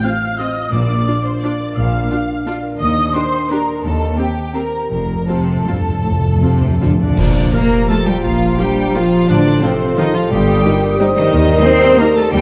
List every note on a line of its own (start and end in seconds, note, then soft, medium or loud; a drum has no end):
0.00 0.74 A2 medium
0.00 0.74 A3 soft
0.00 0.74 C4 soft
0.00 0.55 F4 medium
0.00 0.74 A4 soft
0.00 0.20 F5 medium
0.00 0.39 F6 loud
0.04 0.12 C4 medium
0.04 0.13 F4 soft
0.04 0.38 C5 soft
0.04 0.38 F5 medium
0.04 0.39 F5 medium
0.22 1.23 F5 medium
0.39 0.47 C4 medium
0.39 0.47 F4 medium
0.39 0.74 C5 medium
0.39 0.72 D#5 medium
0.39 0.72 D#6 medium
0.56 2.81 F4 medium
0.72 1.01 A#1 medium
0.72 1.21 A#2 medium
0.72 1.75 A#2 medium
0.72 1.01 A#2 medium
0.72 1.23 D5 medium
0.72 1.25 D5 medium
0.72 1.24 D6 medium
0.89 1.91 D4 soft
1.06 1.15 D4 soft
1.06 1.15 F4 soft
1.06 1.58 A#4 soft
1.24 1.42 C5 medium
1.24 2.27 F5 medium
1.24 1.31 C6 medium
1.42 1.51 D4 medium
1.42 1.51 F4 medium
1.42 2.45 D5 medium
1.42 1.76 D5 medium
1.42 1.76 D6 medium
1.59 2.09 A#4 medium
1.76 2.05 A#1 medium
1.76 2.81 A#2 medium
1.76 2.05 A#2 medium
1.76 2.63 F5 medium
1.76 2.61 F5 medium
1.76 2.63 F6 medium
1.92 2.95 D4 medium
2.10 2.19 D4 soft
2.10 2.19 F4 medium
2.10 2.61 A#4 medium
2.28 2.81 F5 medium
2.46 2.55 D4 medium
2.46 2.54 F4 medium
2.46 3.49 D5 medium
2.63 3.13 A#4 medium
2.79 3.08 D#2 medium
2.79 3.09 D#2 medium
2.79 3.83 D#3 medium
2.79 3.12 D#5 medium
2.79 3.12 D#6 loud
2.97 3.85 D4 soft
3.13 3.23 D4 medium
3.13 3.23 G4 medium
3.13 3.67 A#4 soft
3.13 3.49 C5 medium
3.13 3.50 C5 medium
3.13 3.50 C6 loud
3.33 4.35 G5 medium
3.50 3.59 D4 medium
3.50 3.59 G4 medium
3.50 3.83 A#4 medium
3.50 3.84 A#4 medium
3.50 3.85 D5 medium
3.50 3.84 A#5 medium
3.68 3.85 A#4 medium
3.83 4.12 D#2 medium
3.83 4.92 D#3 medium
3.83 4.18 A4 medium
3.83 4.17 A4 medium
3.83 4.18 A5 medium
4.00 7.19 C4 soft
4.17 4.26 C4 medium
4.17 4.54 G4 medium
4.17 4.55 G4 medium
4.17 4.26 G4 soft
4.17 4.54 C5 medium
4.17 4.54 G5 medium
4.36 4.92 G5 medium
4.54 4.63 C4 medium
4.54 4.63 G4 medium
4.54 4.90 A#4 medium
4.54 5.27 C5 medium
4.54 4.89 A#5 medium
4.73 4.92 G4 soft
4.90 5.22 F1 medium
4.90 5.21 F2 medium
4.90 4.97 F2 soft
4.90 6.03 F3 medium
4.90 5.27 A#4 medium
4.90 5.27 A#5 medium
4.99 5.05 F2 soft
5.06 5.13 F2 soft
5.06 6.22 F4 soft
5.14 5.21 F2 soft
5.22 5.30 F2 soft
5.27 5.38 F2 soft
5.27 5.64 C3 medium
5.27 5.36 C4 soft
5.27 5.36 F4 medium
5.27 7.00 A4 medium
5.27 5.85 C5 soft
5.27 6.90 A5 medium
5.39 5.46 F2 soft
5.47 5.54 F2 soft
5.47 6.60 C6 medium
5.56 5.63 F2 soft
5.64 5.71 F2 soft
5.64 6.04 G2 medium
5.64 5.75 C4 medium
5.64 5.75 F4 medium
5.64 6.80 F5 soft
5.73 5.79 F2 medium
5.80 5.88 F2 soft
5.86 5.95 F2 soft
5.86 6.41 C5 soft
5.96 6.03 F2 soft
6.04 6.35 F1 medium
6.04 6.10 F2 medium
6.04 6.42 A2 medium
6.04 7.51 F3 medium
6.11 6.18 F2 medium
6.19 6.26 F2 medium
6.19 7.70 F4 soft
6.27 6.34 F2 medium
6.35 6.42 F2 medium
6.41 6.51 F2 medium
6.41 6.81 C3 medium
6.41 6.50 C4 soft
6.41 6.50 F4 soft
6.41 6.98 C5 soft
6.52 6.60 F2 medium
6.61 6.68 F2 medium
6.61 7.19 C6 medium
6.69 6.76 F2 medium
6.77 6.84 F2 medium
6.77 6.98 D3 medium
6.77 6.89 C4 medium
6.77 6.89 F4 soft
6.77 10.32 F5 soft
6.86 6.93 F2 medium
6.94 7.01 F2 medium
7.00 7.09 F2 medium
7.00 7.49 D3 medium
7.00 7.49 D4 medium
7.00 7.19 C5 medium
7.00 7.50 D5 medium
7.10 7.17 F2 medium
7.17 7.47 A#1 medium
7.17 8.22 A#2 medium
7.17 9.25 F3 medium
7.17 7.50 F4 medium
7.17 9.25 F4 medium
7.17 9.25 A#5 medium
7.17 concert bass drum medium
7.17 crash medium
7.34 8.40 A#3 medium
7.53 8.58 F3 soft
7.53 7.88 A#3 loud
7.53 7.61 A#3 medium
7.53 7.61 F4 soft
7.53 8.22 G4 medium
7.53 7.90 A#4 medium
7.53 7.89 A#4 medium
7.53 7.89 A#5 loud
7.71 8.05 F4 medium
7.88 7.96 A3 medium
7.88 7.98 A#3 medium
7.88 7.98 F4 medium
7.88 8.19 G4 soft
7.88 8.08 A4 medium
7.88 8.06 A4 medium
7.88 8.06 A5 medium
8.06 8.13 G3 medium
8.06 8.76 F4 medium
8.06 8.23 G4 medium
8.06 8.24 G5 medium
8.23 8.53 A#1 medium
8.23 9.30 A#2 medium
8.23 8.58 F3 medium
8.23 8.61 F4 medium
8.23 8.59 F4 medium
8.23 8.58 F5 loud
8.41 9.30 A#3 medium
8.59 10.32 F3 soft
8.59 8.95 G3 medium
8.59 8.67 A#3 medium
8.59 8.95 D4 medium
8.59 8.67 F4 medium
8.59 8.94 G4 medium
8.59 8.96 G4 medium
8.59 8.95 G5 loud
8.78 9.11 F4 medium
8.95 9.29 F3 medium
8.95 9.03 A#3 medium
8.95 9.63 F4 medium
8.95 9.29 F4 medium
8.95 9.03 F4 medium
8.95 9.29 F4 medium
8.95 9.24 G4 soft
8.95 9.28 F5 medium
9.12 9.80 F4 medium
9.28 9.57 A1 medium
9.28 10.32 A2 medium
9.28 9.63 D3 medium
9.28 10.33 F3 medium
9.28 10.29 F3 medium
9.28 9.63 D4 medium
9.28 9.65 D4 loud
9.28 10.96 F4 medium
9.28 9.63 D5 loud
9.28 10.31 C6 medium
9.63 9.98 C3 medium
9.63 9.71 F3 medium
9.63 10.32 A3 medium
9.63 9.98 C4 medium
9.63 10.00 C4 medium
9.63 9.71 F4 medium
9.63 10.65 A4 medium
9.63 9.98 C5 medium
9.81 10.14 F4 medium
9.97 10.04 D#3 loud
9.97 10.06 F3 medium
9.97 10.04 D#4 loud
9.97 10.16 D#4 loud
9.97 10.06 F4 medium
9.97 10.27 G4 medium
9.97 10.14 D#5 loud
10.14 10.21 F3 medium
10.14 10.31 F4 medium
10.14 10.32 F4 medium
10.14 10.31 F4 medium
10.14 10.31 F5 medium
10.30 10.59 G1 medium
10.30 11.33 G2 medium
10.30 10.98 G3 medium
10.30 12.33 G3 medium
10.30 12.34 G3 medium
10.30 10.98 G4 loud
10.30 11.00 G5 loud
10.30 12.03 D#6 medium
10.48 11.47 A#3 medium
10.64 10.73 G3 medium
10.64 12.41 G3 medium
10.64 10.73 D#4 medium
10.64 10.99 A#4 medium
10.82 11.15 G4 medium
10.99 11.08 G3 medium
10.99 12.33 D#4 medium
10.99 11.08 D#4 medium
10.99 11.27 A4 medium
10.99 11.31 C5 loud
11.16 11.62 D#3 loud
11.16 11.62 D#4 loud
11.16 11.62 D#4 medium
11.16 11.81 G4 medium
11.16 11.62 D#5 loud
11.31 11.59 D#2 loud
11.31 12.32 D#3 medium
11.31 12.31 A#4 loud
11.48 12.35 A#3 medium
11.64 11.73 G3 medium
11.64 12.00 C4 loud
11.64 12.41 D#4 medium
11.64 11.73 D#4 medium
11.64 11.99 C5 loud
11.64 12.00 C6 loud
11.83 12.15 G4 medium
11.99 12.08 G3 medium
11.99 12.17 A#3 loud
11.99 12.08 D#4 medium
11.99 12.28 A4 medium
11.99 12.07 A#4 medium
11.99 12.17 A#4 medium
11.99 12.17 A#5 loud
12.16 12.23 A3 loud
12.16 12.41 G4 medium
12.16 12.32 A4 medium
12.16 12.33 A4 medium
12.16 12.33 A5 loud
12.32 12.41 D#2 medium
12.32 12.41 D#3 loud
12.32 12.41 D#3 medium
12.32 12.41 G3 loud
12.32 12.41 G3 medium
12.32 12.41 C4 medium
12.32 12.41 G4 loud
12.32 12.41 G4 medium
12.32 12.41 G5 loud
12.32 12.41 C6 medium